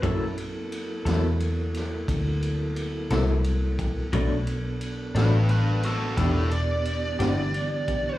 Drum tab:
RD |xxxxxxxxxxxx|xxxxxxxxxxxx|
SD |---o-o---o--|---o-o---o--|
BD |o-----o----o|o-----o----o|